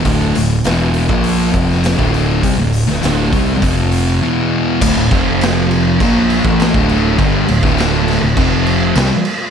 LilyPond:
<<
  \new Staff \with { instrumentName = "Distorted electric guitar" } { \clef bass \time 4/4 \key d \minor \tempo 4 = 101 <d, a, d>8 <d, a,>8 <e, b, e>8. <bes, f bes>8. <f, c f>8. <d, a, d>8. | <c g>16 <d, a,>8 <d, a,>16 <d, a, d>8 <c g c'>8 <f, c f>4 <e, b, e>4 | <d, a,>16 <d, a,>16 <f, c f>4. <bes, f bes>8. <a, e a>8 <d, a, d>8. | <g, d g>8 <d, a,>16 <d, a, d>4 <d, a,>16 <f, c f>4 <c g>16 r8. | }
  \new Staff \with { instrumentName = "Distorted electric guitar" } { \clef bass \time 4/4 \key d \minor <d, a, d>8 <d, a,>8 <e, b, e>8. <bes, f bes>8. <f, c f>8. <d, a, d>8. | <c g>16 <d, a,>8 <d, a,>16 <d, a, d>8 <c g c'>8 <f, c f>4 <e, b, e>4 | <d, a,>16 <d, a,>16 <f, c f>4. <bes, f bes>8. <a, e a>8 <d, a, d>8. | <g, d g>8 <d, a,>16 <d, a, d>4 <d, a,>16 <f, c f>4 <c g>16 r8. | }
  \new Staff \with { instrumentName = "Fingered electric bass" } { \clef bass \time 4/4 \key d \minor d,,8 d,,8 e,,8. bes,,8. f,,8. d,,8. | c,16 d,,8 d,,16 d,,8 c,8 f,,4 r4 | d,,16 d,,16 f,,4. bes,,8. a,,8 d,,8. | g,,8 d,,16 d,,4 d,,16 f,,4 c,16 r8. | }
  \new DrumStaff \with { instrumentName = "Drums" } \drummode { \time 4/4 <hho bd>8 hho8 <hho sn>8 hho16 bd16 hho8 <hho bd>16 sn16 <hho sn>16 bd16 hho8 | <hho bd>8 hho16 sn16 <hho sn>8 <hho bd>8 <hho bd>8 hho8 r4 | <cymc bd>8 <cymc bd>8 <cymc sn>8 cymc8 <cymc bd>8 cymc16 bd16 <cymc sn>16 bd16 cymc8 | <cymc bd>8 cymc16 <bd sn>16 <cymc sn>8 <cymc sn>8 <cymc bd>8 cymc8 <cymc sn>8 cymc8 | }
>>